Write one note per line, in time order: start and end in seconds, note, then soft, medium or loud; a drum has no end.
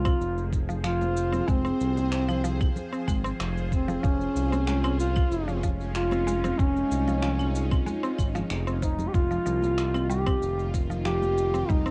0.00 0.14 C2 medium
0.00 4.03 F3 loud
0.00 0.53 F4 loud
0.00 11.91 F4 medium
0.00 5.07 G#4 medium
0.00 5.17 C5 medium
0.05 0.14 C4 loud
0.05 kick loud
0.05 high bongo soft
0.05 claves medium
0.05 shaker soft
0.20 1.42 F1 loud
0.20 shaker soft
0.38 shaker soft
0.53 kick medium
0.53 high bongo soft
0.53 shaker medium
0.69 0.83 F3 medium
0.69 shaker soft
0.84 1.00 F3 medium
0.84 1.50 F4 loud
0.84 finger snap loud
0.84 shaker soft
1.01 high bongo medium
1.01 high conga medium
1.01 shaker soft
1.17 shaker medium
1.33 1.41 C4 medium
1.33 high conga medium
1.33 low conga medium
1.33 shaker soft
1.48 1.72 F1 medium
1.48 1.64 G#3 medium
1.48 2.76 C4 loud
1.48 kick loud
1.48 shaker soft
1.65 1.74 C4 loud
1.65 shaker soft
1.80 2.70 C2 medium
1.80 shaker medium
1.97 high bongo medium
1.97 high conga medium
1.97 shaker soft
2.12 finger snap loud
2.12 shaker soft
2.29 2.43 F3 medium
2.29 claves medium
2.29 shaker soft
2.44 2.60 F3 medium
2.44 shaker medium
2.61 kick loud
2.61 high bongo medium
2.61 claves medium
2.61 shaker soft
2.76 low conga medium
2.76 shaker soft
2.93 3.01 C4 medium
2.93 shaker soft
3.08 3.32 G#1 medium
3.08 3.24 G#3 medium
3.08 kick medium
3.08 claves medium
3.08 shaker medium
3.24 3.33 C4 loud
3.24 shaker soft
3.40 3.97 F1 loud
3.40 finger snap loud
3.40 shaker soft
3.57 shaker soft
3.72 4.05 C4 medium
3.72 kick medium
3.72 shaker medium
3.88 4.02 F3 medium
3.88 low conga medium
3.88 shaker soft
4.03 4.28 F1 loud
4.03 4.19 F3 medium
4.03 4.99 C#4 loud
4.03 9.14 C#4 medium
4.03 kick loud
4.03 shaker soft
4.19 9.14 G#3 medium
4.19 shaker soft
4.35 5.25 C2 medium
4.35 shaker medium
4.52 4.61 C4 medium
4.52 high bongo medium
4.52 high conga medium
4.52 shaker soft
4.67 4.83 G#3 medium
4.67 finger snap loud
4.67 shaker soft
4.84 4.93 C4 loud
4.84 high conga medium
4.84 claves medium
4.84 shaker soft
5.00 5.59 F4 loud
5.00 shaker medium
5.16 10.40 D#4 medium
5.16 kick loud
5.16 high bongo soft
5.16 claves medium
5.16 shaker soft
5.31 6.53 F1 loud
5.31 shaker soft
5.48 5.62 F3 medium
5.48 shaker soft
5.63 5.79 F3 medium
5.63 kick medium
5.63 high bongo soft
5.63 shaker medium
5.80 shaker soft
5.95 6.60 F4 loud
5.95 finger snap loud
5.95 shaker soft
6.11 6.21 C4 medium
6.11 high bongo medium
6.11 high conga medium
6.11 shaker soft
6.27 6.43 G#3 medium
6.27 shaker medium
6.44 6.52 C4 loud
6.44 high conga medium
6.44 low conga medium
6.44 shaker soft
6.59 6.83 F1 loud
6.59 7.86 C#4 loud
6.59 kick loud
6.59 shaker soft
6.76 shaker soft
6.91 7.80 C2 medium
6.91 shaker medium
7.08 7.22 F3 medium
7.08 high bongo medium
7.08 high conga medium
7.08 shaker soft
7.22 7.39 F3 medium
7.22 finger snap loud
7.22 shaker soft
7.39 high bongo soft
7.39 high conga medium
7.39 claves medium
7.39 shaker soft
7.55 shaker medium
7.71 7.80 C4 medium
7.71 kick loud
7.71 high bongo soft
7.71 claves medium
7.71 shaker soft
7.86 8.02 G#3 medium
7.86 low conga medium
7.86 shaker soft
8.03 8.12 C4 loud
8.03 shaker soft
8.18 8.43 G#1 medium
8.18 kick medium
8.18 high bongo soft
8.18 claves medium
8.18 shaker medium
8.35 8.49 F3 loud
8.35 finger snap soft
8.35 shaker soft
8.50 9.08 F1 loud
8.50 finger snap loud
8.50 shaker soft
8.67 8.82 C4 medium
8.67 shaker soft
8.82 8.98 C3 medium
8.82 9.09 D#4 medium
8.82 kick medium
8.82 shaker medium
8.99 low conga loud
8.99 shaker soft
9.08 9.15 G4 medium
9.14 9.38 F1 loud
9.14 11.91 D#3 medium
9.14 10.09 F4 loud
9.14 kick loud
9.14 shaker soft
9.31 9.45 F3 medium
9.31 shaker soft
9.46 10.35 C2 medium
9.46 9.62 F3 medium
9.46 shaker medium
9.62 11.91 A#3 medium
9.62 high bongo medium
9.62 high conga medium
9.62 shaker soft
9.78 finger snap medium
9.78 shaker soft
9.94 10.03 C4 medium
9.94 high conga medium
9.94 claves medium
9.94 shaker soft
10.09 10.26 G3 medium
10.09 10.70 G4 loud
10.09 shaker medium
10.26 10.35 C4 loud
10.26 kick loud
10.26 high bongo medium
10.26 claves medium
10.26 shaker soft
10.42 11.63 F1 medium
10.42 shaker soft
10.59 shaker soft
10.63 11.91 G4 medium
10.74 kick medium
10.74 high bongo soft
10.74 shaker medium
10.90 11.04 F3 medium
10.90 shaker soft
11.05 11.21 F3 medium
11.05 11.71 G4 loud
11.05 finger snap medium
11.05 shaker soft
11.22 high bongo medium
11.22 high conga medium
11.22 shaker soft
11.38 shaker medium
11.54 11.63 C4 medium
11.54 high conga medium
11.54 low conga medium
11.54 shaker soft
11.69 11.91 F1 medium
11.69 11.85 G3 medium
11.69 11.91 D#4 loud
11.69 kick loud
11.69 shaker soft
11.86 11.91 C4 loud
11.86 shaker soft